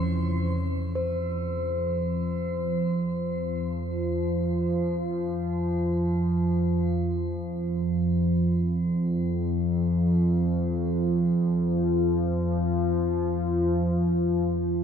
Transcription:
0.00 0.96 F2 medium
0.00 0.96 F3 medium
0.00 0.98 C#4 medium
0.00 0.99 E4 medium
0.00 0.99 C5 medium
0.00 0.99 C6 medium
0.95 14.84 F2 medium
0.95 14.84 F3 medium
0.95 14.84 C5 medium

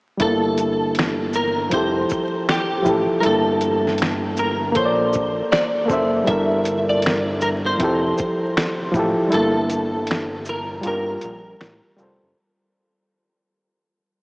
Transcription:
0.18 1.69 G1 loud
0.18 1.35 G3 medium
0.18 1.36 E4 medium
0.18 0.93 A4 loud
0.18 kick loud
0.18 closed hi-hat medium
0.22 1.38 A#3 medium
0.22 1.37 A4 medium
0.58 closed hi-hat soft
0.58 shaker soft
0.95 finger snap medium
0.95 closed hi-hat medium
0.99 snare loud
1.33 1.73 A#4 medium
1.33 shaker medium
1.70 2.06 F1 loud
1.70 2.66 F3 medium
1.70 2.67 E4 medium
1.70 2.51 C5 loud
1.70 kick medium
1.70 closed hi-hat medium
1.74 2.68 G4 medium
1.74 2.69 A4 medium
2.09 kick medium
2.09 shaker soft
2.49 3.07 G4 medium
2.49 finger snap medium
2.49 snare loud
2.49 closed hi-hat medium
2.82 3.16 F3 medium
2.82 3.17 E4 medium
2.82 kick loud
2.82 shaker soft
2.86 3.07 A1 medium
2.86 3.18 G4 medium
2.86 3.19 A4 medium
3.20 4.38 G3 medium
3.20 4.39 E4 medium
3.20 3.25 A#4 medium
3.20 closed hi-hat medium
3.25 4.78 G1 loud
3.25 4.42 A#3 medium
3.25 4.41 A4 medium
3.25 3.97 A4 medium
3.61 closed hi-hat soft
3.61 shaker soft
3.87 snare soft
3.98 finger snap medium
3.98 closed hi-hat medium
4.02 snare medium
4.37 4.76 A#4 medium
4.37 shaker medium
4.72 5.69 A#3 medium
4.72 5.70 A4 medium
4.72 closed hi-hat medium
4.76 5.42 A#1 medium
4.76 5.48 C5 medium
4.76 5.71 C5 medium
4.76 4.86 C#5 medium
4.76 kick medium
4.85 5.76 D5 medium
5.13 kick medium
5.13 shaker soft
5.52 6.10 D5 medium
5.52 finger snap medium
5.52 snare loud
5.52 closed hi-hat medium
5.86 6.19 A#3 medium
5.86 6.20 A4 medium
5.86 kick loud
5.86 shaker soft
5.90 6.23 F#1 medium
5.90 6.22 C5 medium
5.90 6.23 E5 medium
6.24 7.42 G3 medium
6.24 7.43 E4 medium
6.24 6.85 E5 loud
6.24 closed hi-hat medium
6.28 7.76 G1 loud
6.28 7.44 A4 medium
6.28 7.45 A#4 medium
6.28 kick loud
6.65 closed hi-hat soft
6.65 shaker soft
6.89 7.42 D5 medium
7.02 finger snap medium
7.02 closed hi-hat medium
7.07 snare medium
7.41 7.49 A#4 medium
7.41 shaker medium
7.66 8.91 C5 medium
7.77 8.13 F1 loud
7.77 8.74 F3 medium
7.77 8.75 E4 medium
7.77 kick medium
7.77 closed hi-hat medium
7.82 8.76 G4 medium
7.82 8.77 A4 medium
8.18 kick medium
8.18 shaker soft
8.57 finger snap medium
8.57 snare loud
8.57 closed hi-hat medium
8.92 9.15 A1 medium
8.92 9.24 F3 medium
8.92 9.25 E4 medium
8.92 kick loud
8.92 shaker soft
8.96 9.26 G4 medium
8.96 9.28 A4 medium
9.28 10.46 G3 medium
9.28 10.47 E4 medium
9.32 10.81 G1 loud
9.32 10.49 A#3 medium
9.32 10.48 A4 medium
9.32 10.43 A4 medium
9.32 closed hi-hat medium
9.70 closed hi-hat soft
9.70 shaker soft
10.07 finger snap medium
10.07 closed hi-hat medium
10.11 snare loud
10.45 10.86 A#4 medium
10.45 shaker medium
10.81 11.78 G3 medium
10.81 11.79 F4 medium
10.81 closed hi-hat medium
10.86 11.18 G1 loud
10.86 11.80 G4 medium
10.86 11.96 A#4 loud
10.86 11.81 A#4 medium
11.21 11.56 A#1 medium
11.21 closed hi-hat soft
11.21 shaker soft
11.61 11.81 A1 medium
11.61 finger snap medium
11.61 snare loud
11.61 closed hi-hat medium
11.96 12.19 F1 loud
11.96 12.28 G3 medium
11.96 12.29 F4 medium
11.96 shaker soft
12.00 12.30 A4 medium
12.00 12.32 C5 medium
12.23 12.35 F#1 medium

